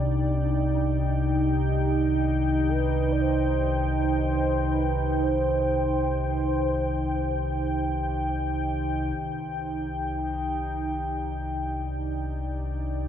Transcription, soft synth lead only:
Already playing: G4
1.19 G4
2.69 B4
3.12 D5
3.21 C5
4.20 C5
4.72 B4
5.23 C5

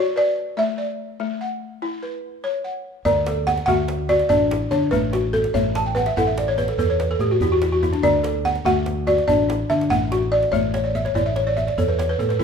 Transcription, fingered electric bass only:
3.05 D2
3.68 D2
4.30 A1
4.71 D3
4.91 A1
5.54 A1
6.16 A1
6.78 E2
7.19 A2
7.40 E2
8.02 D2
8.65 D2
9.28 A1
9.70 D3
9.89 A1
10.51 A1
11.14 A1
11.77 E2
12.18 A2
12.40 E2

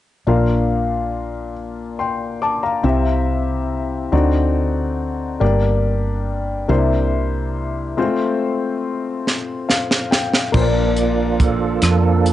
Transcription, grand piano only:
0.27 A#2 D4 F4 A#4 F5
1.99 G5 C6
2.42 A5 D6
2.63 F5 A#5
2.83 C3 C4 E4 G4 E5
4.12 D3 C4 D#4 F#4 D5
5.40 G2 A#3 D4 G4 D5
6.68 C3 A#3 D4 E4 C5
7.97 G#3 C4 F4 C5
8.04 A3
9.69 F5
10.11 G5
10.52 A#2 A#3 D4 F4 C5
10.61 D5

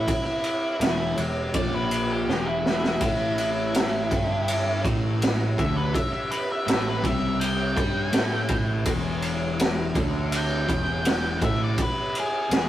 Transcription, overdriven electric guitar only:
0.82 E2
1.19 E2
1.55 A#2
2.28 E2
3.01 A2
4.11 G2
4.86 A2
5.59 D3
6.67 A2
7.04 C3
7.76 G3
8.13 A3
8.49 A2
8.86 E2
9.94 D3
10.68 E2
11.40 A2
12.51 E2

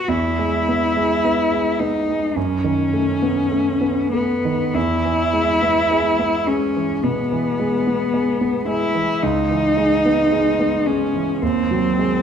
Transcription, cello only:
0.08 E4
1.79 D#4
2.36 C#4
4.13 B3
4.75 E4
6.48 C#4
7.03 B3
8.68 E4
9.23 D#4
10.86 C#4
11.42 C4

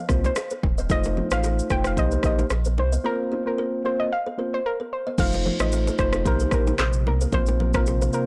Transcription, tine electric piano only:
0.10 A#3 C4 F4 C5
0.89 A3 D#4 F4 C5
1.31 A3 D#4 F4 C5
1.70 A3 D#4 F4 C5
1.97 A#3 D#4 G4 C5
2.24 A#3 D#4 G4 C5
3.04 A#3 C4 F4 C5
3.45 A#3 C4 F4 C5
3.84 A#3 C4 F4 C5
4.38 A#3 C4 F4 C5
5.18 A3 D#4 F4 C5
5.59 A3 D#4 F4 C5
5.98 A3 D#4 F4 C5
6.25 A#3 D#4 G4 C5
6.52 A#3 D#4 G4 C5
7.32 A#3 C4 F4 C5
7.74 A#3 C4 F4 C5
8.13 A#3 C4 F4 C5

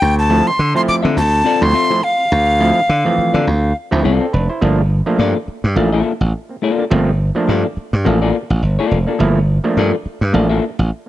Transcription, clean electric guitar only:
1.03 C4 F4 A4 E5
1.44 C4 F4 A4 D5
1.73 C4 F4 A4 E5
3.34 C4 F4 A4 D5
4.03 C4 F4 A4 D5
5.18 A#3 F4 A4 D5
5.76 A#3 F4 A4 D5
5.92 A#3 F4 A4 E5
6.62 A#3 F4 A4 D5
7.48 A#3 F4 A4 D5
8.05 A#3 F4 A4 E5
8.22 A#3 F4 A4 D5
8.79 A#3 F4 A4 D5
9.08 A#3 F4 A4 D5
9.77 A#3 F4 A4 D5
10.33 A#3 F4 A4 D5
10.49 A#3 F4 A4 E5

